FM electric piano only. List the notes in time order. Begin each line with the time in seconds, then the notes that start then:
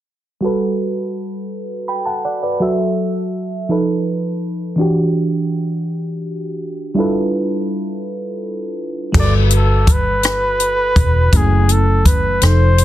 0.41 G3 F#4 A4
0.46 B4
1.88 G5 B5
2.06 F#5 A5
2.25 D5 F#5
2.43 B4 D5
2.60 F#3 F#4 A4 E5
3.69 F3 D#4 A4 B4
4.76 E3 D4 F#4
4.81 G4
6.94 G3 D4 E4 F4
6.99 A4 B4
9.12 G3 F#4 A4
9.18 A#4
9.24 B4
11.32 F#3 A3 C#4 E4
12.42 F3 D#4 A4 C5